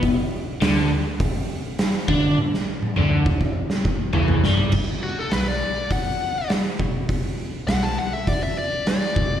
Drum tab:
CC |----------------|----------------|x---------------|----------------|
HH |o---o---o---o---|----------------|----o---o---o---|o---o---o---o---|
SD |----o-------o---|-o-------o----o-|----o-------o---|----o-------o---|
T1 |----------------|o--o------------|----------------|----------------|
T2 |----------------|----o-----------|----------------|----------------|
FT |----------------|------------oo-o|----------------|----------------|
BD |o-------o-----o-|------oo--o-----|o-------o-----o-|o-------o-----o-|